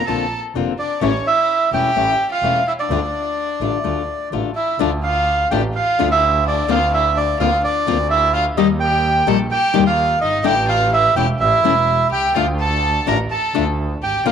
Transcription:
0.06 A#1 D3 A#3 C4 F4 A4 A5
0.55 F1 D3 A#3 C4 F4
0.79 D4 D5
1.01 A1 E3 A3 C#4 E4 C#5
1.26 E4 E5
1.72 E1 E3 A3 C#4 E4 G4 G5
1.96 A1 E3 A3 C#4 E4
2.32 F4 F5
2.43 E1 E3 A3 C#4 E4
2.68 E4 E5
2.79 D4 D5
2.90 D2 D3 A3 D4 F4
3.61 A1 D3 A3 D4 F4
3.84 D2 D3 A3 D4 F4
4.32 A1 D3 A3 D4 F4
4.56 E4 E5
4.79 D2 D3 A3 D4 F4 D5
5.04 F4 F5
5.51 A1 D3 A3 D4 F4 G4 G5
5.75 F4 F5
5.99 D2 D3 A3 D4 F4
6.11 E4 E5
6.47 D4 D5
6.68 D2 D3 A#3 C4 F4 F5
6.92 E4 E5
7.15 D4 D5
7.39 D2 D3 A#3 C4 F4 F5
7.64 D4 D5
7.87 D2 D3 A#3 C4 F4
8.10 E4 E5
8.33 F4 F5
8.57 D#2 D#3 G3 A#3 D#4 G4 D#5
8.80 G4 G5
9.27 A#1 D#3 G3 A#3 D#4 G4 A4 A5
9.51 G4 G5
9.74 D#2 D#3 G3 A#3 D#4 G4
9.86 F4 F5
10.21 G1 D#4 D#5
10.44 A1 D3 A3 D4 E4 G4 G5
10.68 F4 F5
10.92 E4 E5
11.15 E1 E3 A3 C#4 E4 G4 G5
11.39 A1 E4 E5
11.62 E1 E3 A3 C#4 E4
12.11 C2 G4 G5
12.34 D2 D3 A3 D4 F4 F5
12.60 A4 A5
13.06 A1 D3 A3 D4 F4 A#4 A#5
13.31 A4 A5
13.54 D2 D3 A3 D4 F4
14.02 G#1 G4 G5
14.25 A#1 D3 A#3 C4 F4 F5

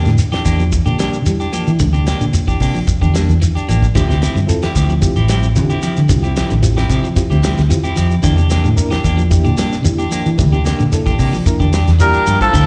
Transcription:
0.05 A2 D3, snare, shekere
0.18 closed hi-hat, shekere
0.32 E3 D4 G4, muted fingered electric bass stroke, snare, closed hi-hat, shekere
0.45 E2 A#3 D4 G4, kick, closed hi-hat, shekere
0.59 F3, shekere
0.72 kick, closed hi-hat, shekere
0.86 A#2 D3 D4 G4, closed hi-hat, shekere
0.99 G3 A#3 D4 G4, snare, closed hi-hat, shekere
1.13 shekere
1.26 E3 G3, closed hi-hat, shekere
1.40 D4 G4, shekere
1.52 F3 A#3 D4 G4, closed hi-hat, shekere
1.67 E3, closed hi-hat, shekere
1.79 D2 D3, kick, closed hi-hat, shekere
1.93 C3 D4 G4, shekere
2.06 A#3 D4 G4, snare, closed hi-hat, shekere
2.21 A#2 D3, closed hi-hat, shekere
2.33 closed hi-hat, shekere
2.47 E3 D4 G4, kick, shekere
2.60 C3 A#3 D4 G4, kick, open hi-hat, shekere
2.75 F3, shekere
2.87 muted fingered electric bass stroke, kick, closed hi-hat, shekere
3.01 E2 D3 D4 G4, kick, shekere
3.14 G3 A#3 D4, snare, closed hi-hat, shekere
3.28 E2, closed hi-hat, shekere
3.41 E3, closed hi-hat, shekere
3.55 D4 G4, muted fingered electric bass stroke, closed hi-hat, shekere
3.69 A1 F3 A#3 D4 G4, closed hi-hat, shekere
3.83 kick, shekere
3.95 D2 D3 F3 C4 E4 F4 G4, kick, closed hi-hat, shekere
4.09 C3 C4 E4 G4, snare, shekere
4.21 F3 C4 E4 G4, snare, closed hi-hat, shekere
4.36 G2 D3, shekere
4.47 C4 E4 F4 A4, closed hi-hat, shekere
4.62 E3 C4 E4 G4, muted fingered electric bass stroke, snare, closed hi-hat, shekere
4.75 D2 F3 C4 E4 G4, kick, closed hi-hat, shekere
4.90 F3, shekere
5.01 C4 E4 F4 G4, kick, closed hi-hat, shekere
5.16 A1 C4 E4 G4, closed hi-hat, shekere
5.28 F3 G3 C4 E4 G4, snare, closed hi-hat, shekere
5.43 shekere
5.55 D3 E3 C4 E4 F4 G4, closed hi-hat, shekere
5.70 C4 E4 G4, shekere
5.82 F3 C4 E4 G4, closed hi-hat, shekere
5.97 D3, closed hi-hat, shekere
6.09 C2 D3 C4 E4 F4 G4, kick, closed hi-hat, shekere
6.23 C3 C4 E4 G4, shekere
6.36 F3 C4 E4 G4, snare, closed hi-hat, shekere
6.50 A1 D3, closed hi-hat, shekere
6.62 C4 E4 F4 G4, closed hi-hat, shekere
6.77 E3 C4 E4 G4, snare, shekere
6.89 C3 F3 C4 E4 G4, kick, closed hi-hat, shekere
7.04 F3, shekere
7.16 C4 E4 F4 G4, muted fingered electric bass stroke, kick, closed hi-hat, shekere
7.30 D2 D3 C4 E4 G4, shekere
7.43 F3 G3 C4 E4 G4, snare, closed hi-hat, shekere
7.58 D2, snare, closed hi-hat, shekere
7.69 E3 C4 E4 F4 G4, closed hi-hat, shekere
7.84 C4 E4 G4, muted fingered electric bass stroke, closed hi-hat, shekere
7.96 F2 F3 C4 E4 G4, closed hi-hat, shekere
8.11 shekere
8.22 E2 D3 A#3 D4 E4 G4, kick, closed hi-hat, shekere
8.37 C3 D4 G4, shekere
8.50 A#3 D4 G4, snare, closed hi-hat, shekere
8.64 A2 D3, shekere
8.76 A#3 D4 E4 A#4, closed hi-hat, shekere
8.90 E3 D4 G4, muted fingered electric bass stroke, snare, closed hi-hat, shekere
9.04 E2 A#3 D4 G4, kick, closed hi-hat, shekere
9.17 F3, shekere
9.30 A#3 D4 E4 G4, kick, closed hi-hat, shekere
9.44 A#2 D3 D4 G4, closed hi-hat, shekere
9.57 G3 A#3 D4 G4, snare, closed hi-hat, shekere
9.72 snare, shekere
9.84 E3 A#3 D4 E4 G4, closed hi-hat, shekere
9.98 D4 G4, shekere
10.11 F3 A#3 D4 G4, closed hi-hat, shekere
10.26 E3, closed hi-hat, shekere
10.38 D2 D3 A#3 D4 E4 G4, kick, closed hi-hat, shekere
10.52 C3 D4 G4, shekere
10.65 A#3 D4 G4, snare, closed hi-hat, shekere
10.79 A#2 D3, closed hi-hat, shekere
10.92 A#3 D4 E4 A4, closed hi-hat, shekere
11.06 E3 D4 G4, kick, shekere
11.19 C3 A#3 D4 G4, kick, open hi-hat, shekere
11.33 F3, shekere
11.46 A#3 D4 E4 A#4, muted fingered electric bass stroke, kick, closed hi-hat, shekere
11.60 E2 D3 D4 G4, kick, shekere
11.73 G3 D4 G4, muted clean electric guitar stroke, snare, closed hi-hat, shekere
11.87 E2, snare, closed hi-hat, shekere
12.00 A#2 G3 A#3 D4 E4 G4 A#4, muted clean electric guitar stroke, closed hi-hat, shekere
12.13 D4 G4, muted fingered electric bass stroke, closed hi-hat, shekere
12.26 G2 F3 A#3 D4 G4, closed hi-hat, shekere
12.41 A2 F3 A4, kick, shekere
12.53 D2 D3 F3 C4 E4 F4 G4, kick, crash, shekere

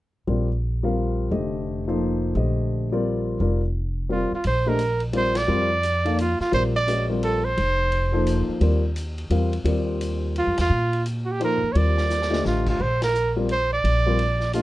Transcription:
0.27 A#1 G3 C4 F4 A#4 D5
0.83 G3 C4 F4 A#4 F5
1.31 F1 D3 A3 G4 C5 D#5
1.88 F3 A#3 D#4 A4 C5
2.35 A#1 D3 A3 G4 C5 D#5
2.92 G3 C4 F4 A#4 D5
3.40 F1 G3 C4 F4 A#4 D5
4.09 G3 C4 F4 A#4 D5
4.31 F4, muted upright bass stroke
4.44 A#1 C5, ride
4.66 A3 D4 G4 A#4 C5 D#5
4.79 hi-hat pedal, ride
5.00 ride
5.13 G3 C4 F4 A#4 C5 D5, ride
5.35 D5, snare, ride
5.48 F2 G3 C4 F4 A#4 D5
5.83 hi-hat pedal, ride
6.05 A#3 D#4 A4 D5 F5, ride
6.18 F4, hi-hat pedal, ride
6.40 F4, muted upright bass stroke, snare
6.52 A#1 G3 C4 F4 A#4 C5 D5, ride
6.76 D5
6.87 G#3 C#4 F#4 B4 D#5, hi-hat pedal, ride
7.10 G3 C4 F4 A#4 D5
7.23 A4, ride
7.44 C5
7.57 F1, ride
7.92 ride
8.12 F3 A#3 D#4 A4 C5
8.26 hi-hat pedal, ride
8.48 muted upright bass stroke
8.61 D#2 G3 C4 F4 A#4 D5, ride
8.96 hi-hat pedal, ride
9.18 ride
9.30 E2 G3 C4 F4 A#4 F5, ride
9.53 ride
9.64 D#2 G3 C4 F4 A#4 D5, ride
10.01 hi-hat pedal, ride
10.36 F4, ride
10.47 F2
10.58 E2 F4, snare, ride
10.70 A#2
10.93 ride
11.06 hi-hat pedal, ride
11.25 F#4
11.31 G4
11.40 F3 A#3 D#4 A4 C5, ride
11.44 A#4
11.63 muted upright bass stroke
11.72 D#2 G3 C4 F4 A#4 C#5 D5, ride
11.77 D5
11.97 snare
12.10 snare, hi-hat pedal
12.22 snare
12.30 D3 A3 G4 C5 D#5, snare
12.45 A1 F4, snare
12.66 F4, kick, crash
12.80 A#1 C5
13.02 A#4, snare, ride
13.14 hi-hat pedal
13.36 G3 C4 F4 A#4 D5
13.49 C5, ride
13.73 D5
13.84 A#1, ride
14.06 G3 C4 F4 A#4 D5
14.19 ride
14.40 snare
14.53 A3 D4 F4 G4 C5 D#5, hi-hat pedal, ride

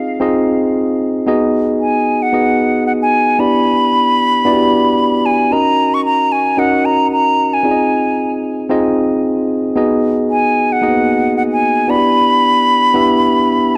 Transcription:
Already playing: C4 D#4 F4 G#4 D#5
0.20 C4 D#4 F4 G#4 D#5
1.26 B3 D#4 F#4 G#4 D#5
1.80 G#5
2.22 F#5
2.32 B3 D#4 F#4 G#4 D#5
2.87 F#5
3.02 G#5
3.39 B3 D4 E4 G4 D5 B5
4.45 B3 D4 E4 F#4 D5
4.53 G4
5.26 G#5
5.51 C#4 D#4 F#4 A#4 D#5 A#5
5.94 C#6
6.05 A#5
6.32 G#5
6.57 C#4 D#4 F#4 A#4 D#5 F#5
6.85 A#5
7.12 A#5
7.54 G#5
7.63 C4 D#4 F4 G#4 D5
7.71 D#5
8.69 C4 D#4 F4 G#4 D#5
9.76 B3 D#4 F#4 G#4 D#5
10.30 G#5
10.72 F#5
10.82 A#3 D#4 F#4 G#4 D#5
10.88 B3
11.37 F#5
11.52 G#5
11.88 B3 D4 E4 F#4 D5 B5
11.95 G4
12.94 B3 D4 E4 G4 E5

